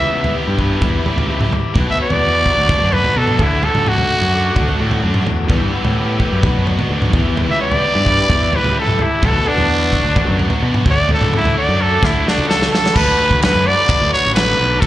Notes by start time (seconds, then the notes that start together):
Already playing: E2 B2 E3 G3 B3 E4 G4 B4 E5 B5
0.01 C#2
0.12 B3
0.24 floor tom
0.36 E2 B2 E3 G3 E4 G4
0.47 G2
0.59 B4, kick
0.81 E2 E4, kick, floor tom
1.05 E2 B2 E3 G3 E4 G4, floor tom
1.16 C#2, floor tom
1.30 E4
1.41 mid tom
1.52 G4, floor tom
1.74 B1 B2 F#3 B3 D4 F#4 B4 C#6, kick, floor tom
1.88 D2 E5
1.99 B3 D5
2.10 E2, floor tom
2.22 F#4
2.46 B2 F#3 B3 D4 F#4 C#5, kick
2.57 D2
2.69 D4, kick, floor tom
2.82 F#2
2.92 F#4 B4, floor tom
3.04 floor tom
3.15 B2 F#3 B3 D4 F#4 A4
3.27 mid tom
3.38 D2 D3 A3 D4 E4 F#4 A4 D6, kick, floor tom
3.43 F#5
3.63 D3 A4, floor tom
3.75 C#2, floor tom, mid tom
3.87 A3 F#4, mid tom
3.98 floor tom
4.08 D3 A3 D4 F#4
4.21 F#2
4.33 D5
4.56 D2 D4, kick, floor tom
4.68 floor tom
4.79 A2 D3 A3 D4 F#4
4.91 floor tom
5.03 F#2 D4
5.14 mid tom
5.26 E2 F#4, floor tom
5.49 E2 B2 E3 G3 B3 G4 B4 G5 E6, kick, floor tom
5.61 G2
5.72 B3
5.84 A2, floor tom
5.96 G4
6.20 E2 B2 E3 G3 B3 G4 B4, kick
6.32 F#2
6.43 B1 B2 F#3 B3 D4 F#4 B4 D5 C#6, kick, floor tom
6.56 F#2
6.67 F#4, floor tom
6.79 floor tom
6.90 D2 D4
7.02 mid tom
7.13 E2 B2 E3 G3 E4 G4 E5 B5, kick, floor tom
7.37 E3, floor tom
7.48 C#2 E5
7.61 B3 D5
7.71 floor tom
7.83 E2 B2 E3 G3 E4 G4
7.95 G2
8.06 B4, kick
8.29 E2 E4, kick, floor tom
8.52 E2 B2 E3 G3 E4 G4, floor tom
8.56 B4
8.64 C#2, floor tom
8.77 E4 A4
8.87 mid tom
8.99 G4, floor tom
9.03 E4
9.22 B1 B2 F#3 B3 D4 F#4 A4 B4 C#6, kick, floor tom
9.34 D2
9.47 B3 D4
9.57 E2, floor tom
9.70 F#4
9.92 B2 F#3 B3 D4 F#4 C#5, kick
10.04 D2
10.16 D4, kick, floor tom
10.28 F#2
10.39 F#4, floor tom
10.50 floor tom
10.61 B2 F#3 B3 D4 F#4
10.74 mid tom
10.85 D2 D3 A3 D4 F#4 A4, kick, floor tom
10.89 D5 F#5 D6
11.09 D3, floor tom
11.14 A4
11.21 C#2, floor tom, mid tom
11.33 A3 E4, mid tom
11.45 floor tom
11.55 D3 A3 D4 F#4 D5
11.69 F#2
11.80 A4 D5
12.03 D2 D4 E4, kick, snare
12.25 D3 A3 D4 F#4, snare
12.29 D4
12.38 C#2
12.48 D4 A4 A5, snare
12.62 snare
12.71 F#4 A4 A5, snare
12.86 snare
12.93 D2 D3 A3 D4 F#4 B4 B5, kick, crash
12.98 F#3 A3 D4 F#4 B4 F#5 D6
13.18 D3 F#3 A3 D4 F#4
13.22 A3 D4 F#4
13.30 D2, kick
13.42 D3 F#3 A3 D4 F#4 B4 B5, snare, ride bell
13.55 F#2
13.65 D3 F#3 A3 D4 F#4 D5 D6
13.89 D3 F#3 A3 D4 F#4, kick, ride bell
14.01 D2
14.11 D3 F#3 A3 D4 F#4 C#5 C#6
14.25 A1
14.34 D3 F#3 A3 D4 F#4 B4 B5, snare, ride bell
14.39 D4 F#4
14.58 B1 D3 A3 D4 F#4
14.62 F#3 D4 F#4
14.78 D2 D3 A3 D4 F#4 A4 A5, kick
14.82 ride bell